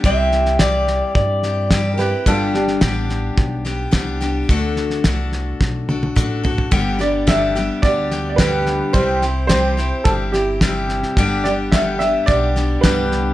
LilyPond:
<<
  \new Staff \with { instrumentName = "Clean electric guitar" } { \time 4/4 \key g \major \tempo 4 = 108 e''4 d''4 d''4. r8 | r1 | r1 | r1 |
r1 | r1 | }
  \new Staff \with { instrumentName = "Upright piano" } { \time 4/4 \key g \major r2. r8 <g' bes' b'>8 | <f' a'>8 <d' g'>2 r4. | r1 | r8 d''8 e''4 d''8.~ d''32 d''32 b'4 |
c''4 c''4 a'8 g'4 r8 | r8 d''8 e''8 e''8 d''4 b'4 | }
  \new Staff \with { instrumentName = "Steel-string acoustic guitar" } { \time 4/4 \key g \major <c g c' e' g'>4 <g c' e' g'>4. <c' e' g'>8 <g c' e' g'>8 <c' e' g'>8 | <g, d g b d' g'>4 <g b d' g'>4. <g b d' g'>8 <g b d' g'>8 <g b d' g'>8 | <d a d' fis' a'>4 <a d' fis' a'>4. <d' fis' a'>8 <a d' fis' a'>8 <d' fis' a'>8 | <g, d g b d' g'>8 <g b d' g'>8 <g, d g b d' g'>8 <g b d' g'>8 <g b d' g'>8 <g b d' g'>8 <g, d g b d' g'>4 |
<c g c' e' g'>8 <c' e' g'>8 <c g c' e' g'>8 <c' e' g'>8 <g c' e' g'>8 <c' e' g'>8 <c g c' e' g'>4 | <g, d g b d' g'>8 <g b d' g'>8 <g, d g b d' g'>8 <g b d' g'>8 <g b d' g'>8 <g b d' g'>8 <g, d g b d' g'>4 | }
  \new Staff \with { instrumentName = "Upright bass" } { \clef bass \time 4/4 \key g \major c,2 g,2 | g,,4 a,,4 b,,4 c,4 | d,4 c,4 b,,4 a,,4 | g,,2 d,2 |
c,2 g,,2 | g,,2 b,,4 c,4 | }
  \new DrumStaff \with { instrumentName = "Drums" } \drummode { \time 4/4 <bd sn>8 sn16 sn16 <hhp bd sn>8 sn8 <bd sn>8 sn8 <hhp bd sn>8 sn8 | <bd sn>8 sn16 sn16 <hhp bd sn>8 sn8 <bd sn>8 sn8 <hhp bd sn>8 sn8 | <bd sn>8 sn16 sn16 <hhp bd sn>8 sn8 <bd sn>8 tommh16 tommh16 <hhp bd toml>8 tomfh16 tomfh16 | <bd sn>8 sn8 <hhp bd sn>8 sn8 <bd sn>8 sn8 <hhp bd sn>8 sn8 |
<bd sn>8 sn8 <hhp bd sn>8 sn8 <bd sn>8 sn8 <hhp bd sn>8 sn16 sn16 | <bd sn>8 sn8 <hhp bd sn>8 sn8 <bd sn>8 sn8 <hhp bd sn>8 sn8 | }
>>